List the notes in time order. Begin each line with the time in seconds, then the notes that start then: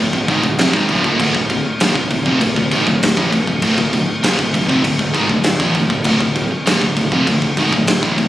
Already playing: D2
0.00 D1 A2
0.13 D1 D2 A2, kick
0.28 G#1 G#2 D#3, kick, crash
0.43 D1 D2 A2, kick
0.58 F1 F2 C3, snare, crash
0.73 G#1 G#2 D#3, kick
0.89 D1 D2 A2, kick, crash
1.04 D#1 D#2 A#2, kick
1.19 D1 D2 A2, kick, crash
1.34 D1 D2 A2, kick
1.50 D1 D2 A2, kick, crash
1.66 muted distorted electric guitar stroke, muted fingered electric bass stroke
1.80 D#1 D#2 A#2, snare, crash
1.95 D1 D2 A2, kick
2.11 D1 D2 A2, kick, crash
2.26 F1 F2 C3, kick
2.41 D1 D2 A2, kick, crash
2.56 D1 D2 A2, kick
2.71 G#1 G#2 D#3, kick, crash
2.86 D1 D2 A2, kick
3.01 D1 D2 A2, snare, crash
3.16 A1 A2 E3, kick
3.32 D1 D2 A2, kick, crash
3.47 D1 D2 A2, kick
3.62 D1 D2 A2, kick, crash
3.78 D1 D2 A2, kick
3.93 D1 D2 A2, kick, crash
4.08 muted fingered electric bass stroke, muted distorted electric guitar stroke
4.22 D#1 D#2 A#2, snare, crash
4.39 D1 D2 A2, kick
4.54 D1 D2 A2, kick, crash
4.68 F1 F2 C3, kick
4.84 D1 D2 A2, kick, crash
4.98 D1 D2 A2, kick
5.13 G#1 G#2 D#3, kick, crash
5.29 D1 D2 A2, kick
5.44 D1 D2 A2, snare, crash
5.60 A1 A2 E3, kick
5.74 D1 D2 A2, kick, crash
5.90 D1 D2 A2, kick
6.04 D1 D2 A2, kick, crash
6.20 D1 D2 A2, kick
6.36 D1 D2 A2, kick, crash
6.52 muted distorted electric guitar stroke, muted fingered electric bass stroke
6.66 D#1 D#2 A#2, snare, crash
6.81 D1 D2 A2, kick
6.96 D1 D2 A2, kick, crash
7.12 F1 F2 C3, kick
7.27 D1 D2 A2, kick, crash
7.42 D1 D2 A2, kick
7.57 G#1 G#2 D#3, kick, crash
7.72 D1 D2 A2, kick
7.87 D1 D2 A2, snare, crash
8.03 A1 A2 E3, kick
8.18 D1 D2 A2, kick, crash